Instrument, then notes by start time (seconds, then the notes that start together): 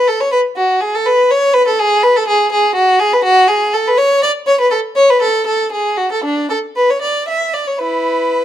violin
0.08 A4
0.21 C#5
0.32 B4
0.57 F#4
0.81 G#4
0.95 A4
1.06 B4
1.31 C#5
1.54 B4
1.67 A4
1.79 G#4
2.03 B4
2.16 A4
2.28 G#4
2.52 G#4
2.75 F#4
2.99 G#4
3.13 B4
3.24 F#4
3.48 G#4
3.73 A4
3.88 B4
3.98 C#5
4.23 D5
4.47 C#5
4.61 B4
4.71 A4
4.96 C#5
5.10 B4
5.22 A4
5.46 A4
5.72 G#4
5.97 F#4
6.12 A4
6.24 D4
6.50 A4
6.76 B4
6.90 C#5
7.02 D5
7.28 E5
7.54 D5
7.67 C#5
7.79 E4 B4